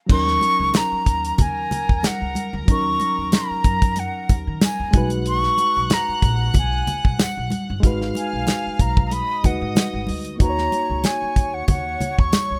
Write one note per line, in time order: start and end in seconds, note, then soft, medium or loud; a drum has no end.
0.06 0.35 D#2 loud
0.06 2.63 F#3 medium
0.06 2.64 C#4 medium
0.06 4.90 A#4 medium
0.06 4.90 A#5 medium
0.06 kick loud
0.06 crash medium
0.11 2.65 D#4 medium
0.11 2.66 A#4 medium
0.11 0.79 C#6 loud
0.28 snare soft
0.41 closed hi-hat medium
0.41 muted conga medium
0.60 0.71 C#2 medium
0.74 1.43 A#5 loud
0.74 snare loud
0.74 closed hi-hat medium
0.74 tambourine medium
0.74 high conga medium
0.92 muted upright bass stroke soft
1.06 1.32 D#2 medium
1.06 kick medium
1.06 closed hi-hat medium
1.25 closed hi-hat medium
1.38 1.64 D#2 medium
1.38 2.08 G#5 medium
1.38 kick medium
1.38 closed hi-hat medium
1.38 muted conga soft
1.38 low conga medium
1.71 closed hi-hat medium
1.71 muted conga soft
1.71 low conga medium
1.89 2.01 D#2 medium
1.89 kick medium
2.03 2.55 F#5 medium
2.03 muted upright bass stroke soft
2.03 snare loud
2.03 closed hi-hat loud
2.03 tambourine medium
2.03 high conga medium
2.21 2.33 C#2 medium
2.35 closed hi-hat medium
2.35 high conga medium
2.53 2.65 D2 loud
2.66 2.94 D#2 medium
2.66 4.88 F#3 medium
2.66 4.89 C#4 soft
2.66 4.90 D#4 medium
2.66 kick loud
2.66 closed hi-hat medium
2.72 4.92 A#4 medium
2.72 3.36 C#6 loud
3.00 closed hi-hat medium
3.00 muted conga medium
3.18 3.30 D#2 medium
3.32 4.01 A#5 medium
3.32 snare loud
3.32 closed hi-hat loud
3.32 tambourine medium
3.32 high conga medium
3.51 muted upright bass stroke soft
3.64 4.04 F#2 loud
3.64 kick medium
3.64 closed hi-hat medium
3.64 muted conga soft
3.82 kick loud
3.82 closed hi-hat medium
3.96 4.36 F#5 medium
3.96 closed hi-hat medium
3.96 muted conga soft
4.29 4.43 D#2 medium
4.29 kick medium
4.29 closed hi-hat medium
4.29 muted conga soft
4.47 4.59 D#3 medium
4.61 5.09 G#5 medium
4.61 snare loud
4.61 closed hi-hat loud
4.61 tambourine medium
4.61 high conga medium
4.80 4.91 D#2 medium
4.91 5.45 B1 loud
4.91 7.46 G#3 medium
4.91 7.47 D#4 medium
4.91 7.79 F#5 medium
4.91 7.79 F#6 loud
4.91 kick loud
4.91 closed hi-hat medium
4.91 high conga medium
4.95 7.48 F#4 medium
4.95 7.49 B4 medium
5.10 closed hi-hat medium
5.26 5.95 C#6 loud
5.26 closed hi-hat medium
5.43 snare soft
5.58 closed hi-hat medium
5.58 muted conga soft
5.76 5.88 B1 medium
5.90 6.56 A#5 medium
5.90 snare loud
5.90 closed hi-hat loud
5.90 tambourine medium
5.90 high conga medium
6.09 muted upright bass stroke soft
6.22 6.48 A#1 loud
6.22 kick medium
6.22 closed hi-hat medium
6.54 6.80 B1 medium
6.54 kick medium
6.54 closed hi-hat medium
6.54 muted conga medium
6.54 low conga medium
6.58 7.23 G#5 medium
6.87 closed hi-hat medium
6.87 muted conga medium
6.87 low conga medium
7.05 7.16 B1 medium
7.05 kick medium
7.19 7.70 F#5 medium
7.19 muted upright bass stroke soft
7.19 snare loud
7.19 closed hi-hat loud
7.19 tambourine medium
7.19 high conga medium
7.37 7.49 B1 medium
7.50 closed hi-hat medium
7.50 high conga medium
7.70 7.81 G1 medium
7.80 8.09 G#1 loud
7.80 9.39 G#3 medium
7.80 9.40 D#4 medium
7.80 9.08 F5 medium
7.80 9.09 F6 medium
7.80 kick loud
7.80 closed hi-hat medium
7.84 9.41 F#4 medium
7.84 9.42 B4 medium
8.01 snare soft
8.15 8.82 G#5 medium
8.15 closed hi-hat medium
8.15 muted conga medium
8.33 8.45 B1 medium
8.47 snare medium
8.47 closed hi-hat loud
8.47 tambourine medium
8.47 high conga medium
8.66 muted upright bass stroke soft
8.79 9.19 B1 medium
8.79 9.06 A#5 loud
8.79 kick medium
8.79 closed hi-hat medium
8.97 kick medium
9.07 9.14 A#5 medium
9.11 10.37 D#5 medium
9.11 9.47 B5 loud
9.11 10.37 D#6 medium
9.11 closed hi-hat medium
9.11 muted conga medium
9.43 9.58 D#2 medium
9.43 10.40 G#3 soft
9.43 10.38 D#4 soft
9.43 10.40 F#4 soft
9.43 10.41 B4 medium
9.43 10.09 F#5 medium
9.43 kick medium
9.43 closed hi-hat medium
9.43 muted conga medium
9.43 low conga medium
9.61 9.73 G#2 medium
9.75 snare loud
9.75 closed hi-hat loud
9.75 tambourine medium
9.75 high conga medium
9.93 10.05 G#1 medium
10.07 10.34 D2 medium
10.07 open hi-hat medium
10.07 high conga medium
10.25 closed hi-hat medium
10.37 10.66 D#2 medium
10.37 12.60 A#3 medium
10.37 12.60 D#4 medium
10.37 12.60 F#4 medium
10.37 12.60 C#5 medium
10.37 12.60 C#6 medium
10.37 kick loud
10.37 closed hi-hat medium
10.42 10.49 B4 medium
10.42 11.07 A#5 loud
10.50 12.60 C#5 medium
10.58 snare soft
10.72 closed hi-hat medium
10.72 muted conga medium
10.90 11.01 C#2 medium
11.04 11.56 G#5 medium
11.04 snare medium
11.04 closed hi-hat loud
11.04 tambourine medium
11.04 high conga medium
11.22 muted upright bass stroke soft
11.36 11.62 D#2 medium
11.36 kick medium
11.36 closed hi-hat medium
11.54 11.69 F#5 medium
11.68 11.94 D#2 medium
11.68 12.21 F#5 medium
11.68 kick medium
11.68 closed hi-hat medium
11.68 muted conga medium
11.68 low conga medium
12.01 closed hi-hat medium
12.01 muted conga soft
12.01 low conga medium
12.19 12.30 D#2 medium
12.19 12.60 C#6 medium
12.19 kick medium
12.32 muted upright bass stroke soft
12.32 snare loud
12.32 closed hi-hat loud
12.32 tambourine medium
12.32 high conga medium
12.50 12.60 C#2 medium